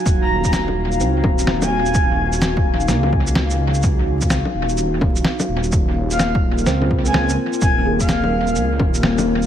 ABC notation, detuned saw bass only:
X:1
M:4/4
L:1/16
Q:"Swing 16ths" 1/4=127
K:Ebdor
V:1 name="Detuned saw bass" clef=bass
E,,,8 D,,2 E,,,6- | E,,,8 D,,8- | D,,4- D,, z E,,,6 z2 E,,, E,,, | E,,,8 D,,6 z2 |
E,,,8 D,,2 E,,,6 |]